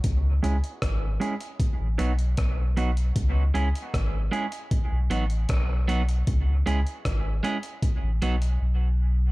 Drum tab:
HH |x-xxx-xxx-xxx-xx|x-xxx-xxx-xxx-xx|x-xxx-xxx-xx----|
SD |----r-------r---|----r-------r---|----r-----------|
BD |o---o---o---o---|o---o---o---o---|o---o---o-------|